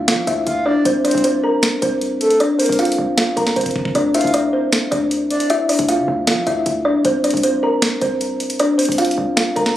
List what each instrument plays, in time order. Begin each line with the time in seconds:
0.08 808-style bass F3, kalimba F4 F5, snare, closed hi-hat
0.27 808-style bass D2, kalimba E4 E5, closed hi-hat
0.47 808-style bass D2, soft synth lead F5, closed hi-hat
0.66 kalimba D4 D5, soft synth lead D5
0.76 808-style bass F2
0.85 808-style bass C2, kalimba C4 C5, closed hi-hat
1.05 kalimba D4 D5, soft synth lead C5, closed hi-hat
1.11 808-style bass C2, closed hi-hat
1.18 closed hi-hat
1.24 kalimba C4 C5, closed hi-hat
1.44 kalimba A#4 A#5
1.63 snare, closed hi-hat
1.82 808-style bass C2, kalimba C4 C5, closed hi-hat
2.01 closed hi-hat
2.20 soft synth lead A4, closed hi-hat
2.31 closed hi-hat
2.40 kalimba D4 D5, closed hi-hat
2.59 kalimba C4 C5, soft synth lead A#4, closed hi-hat, open hi-hat
2.66 808-style bass C2, closed hi-hat
2.72 closed hi-hat
2.79 kalimba F4 F5, closed hi-hat
2.85 closed hi-hat
2.92 closed hi-hat
2.98 808-style bass C2
3.17 kalimba F4 F5, snare, closed hi-hat
3.36 808-style bass C2, kalimba A#4 A#5, closed hi-hat
3.47 snare
3.56 808-style bass C2, kalimba C4 C5, closed hi-hat
3.61 closed hi-hat
3.66 kick, closed hi-hat
3.71 closed hi-hat
3.76 kick
3.85 kick
3.95 808-style bass D2, kalimba D4 D5, closed hi-hat
4.14 kalimba E4 E5, soft synth lead F5, closed hi-hat
4.21 808-style bass D2, closed hi-hat
4.27 closed hi-hat
4.34 kalimba D4 D5, closed hi-hat
4.53 kalimba C4 C5
4.72 snare, closed hi-hat
4.91 808-style bass D2, kalimba D4 D5, closed hi-hat
5.11 closed hi-hat
5.30 soft synth lead D5, closed hi-hat
5.40 closed hi-hat
5.50 kalimba E4 E5, closed hi-hat
5.69 kalimba D4 D5, closed hi-hat, open hi-hat
5.79 808-style bass D2, closed hi-hat
5.89 kalimba F4 F5, closed hi-hat
5.98 808-style bass D3
6.08 808-style bass D2
6.27 808-style bass F3, kalimba F4 F5, snare, closed hi-hat
6.47 808-style bass D2, kalimba E4 E5, closed hi-hat
6.66 808-style bass D2, closed hi-hat
6.85 kalimba D4 D5
6.95 808-style bass F2
7.05 808-style bass C2, kalimba C4 C5, closed hi-hat
7.24 kalimba D4 D5, closed hi-hat
7.31 808-style bass C2, closed hi-hat
7.37 closed hi-hat
7.43 kalimba C4 C5, closed hi-hat
7.63 kalimba A#4 A#5
7.82 snare, closed hi-hat
8.01 808-style bass C2, kalimba C4 C5, closed hi-hat
8.21 closed hi-hat
8.40 closed hi-hat
8.50 closed hi-hat
8.60 kalimba D4 D5, closed hi-hat
8.78 kalimba C4 C5, closed hi-hat, open hi-hat
8.85 808-style bass C2, closed hi-hat
8.92 closed hi-hat
8.98 kalimba F4 F5, closed hi-hat
9.05 closed hi-hat
9.11 closed hi-hat
9.18 808-style bass C2
9.37 kalimba F4 F5, snare, closed hi-hat
9.56 808-style bass C2, kalimba A#4 A#5, closed hi-hat
9.66 snare